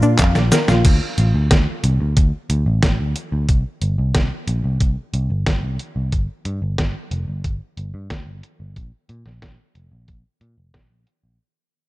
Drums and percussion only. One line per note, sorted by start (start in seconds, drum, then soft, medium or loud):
0.02 cabasa soft
0.19 kick loud
0.19 snare medium
0.19 clap loud
0.19 closed hi-hat medium
0.19 cabasa soft
0.35 snare medium
0.35 cabasa soft
0.52 snare medium
0.52 closed hi-hat medium
0.52 cabasa medium
0.68 snare medium
0.68 cabasa soft
0.85 kick loud
0.85 closed hi-hat medium
0.85 crash medium
1.18 closed hi-hat medium
1.51 kick loud
1.51 snare loud
1.51 closed hi-hat medium
1.84 closed hi-hat medium
2.17 kick loud
2.17 closed hi-hat medium
2.50 closed hi-hat medium
2.83 kick loud
2.83 snare loud
2.83 closed hi-hat medium
3.16 closed hi-hat medium
3.49 kick loud
3.49 closed hi-hat medium
3.82 closed hi-hat medium
4.15 kick loud
4.15 snare loud
4.15 closed hi-hat medium
4.47 closed hi-hat medium
4.80 kick loud
4.80 closed hi-hat medium
5.14 closed hi-hat medium
5.46 kick loud
5.46 snare loud
5.46 closed hi-hat medium
5.79 closed hi-hat medium
6.12 kick loud
6.12 closed hi-hat medium
6.45 closed hi-hat medium
6.78 kick loud
6.78 snare loud
6.78 closed hi-hat medium
7.11 closed hi-hat medium
7.44 kick loud
7.44 closed hi-hat medium
7.77 closed hi-hat medium
8.10 kick loud
8.10 snare loud
8.10 closed hi-hat medium
8.43 closed hi-hat medium
8.76 kick loud
8.76 closed hi-hat medium
9.09 closed hi-hat medium
9.26 snare soft
9.42 kick loud
9.42 snare loud
9.42 closed hi-hat medium
9.75 closed hi-hat medium
10.08 kick loud
10.08 closed hi-hat medium
10.41 closed hi-hat medium
10.74 kick loud
10.74 snare loud
10.74 closed hi-hat medium
11.07 closed hi-hat medium